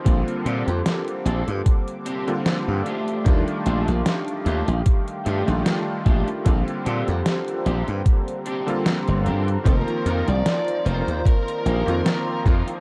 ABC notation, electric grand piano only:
X:1
M:4/4
L:1/16
Q:"Swing 16ths" 1/4=75
K:Bb
V:1 name="Electric grand piano"
[D,G,B,CF]8- [D,G,B,CF]3 [D,G,B,CF]3 z2 | [E,G,A,DF]8- [E,G,A,DF]3 [E,G,A,DF]4- [E,G,A,DF] | [D,G,B,CF]8- [D,G,B,CF]3 [D,G,B,CF]4- [D,G,B,CF] | [E,F,B,CF]8- [E,F,B,CF]3 [E,F,B,CF]4- [E,F,B,CF] |]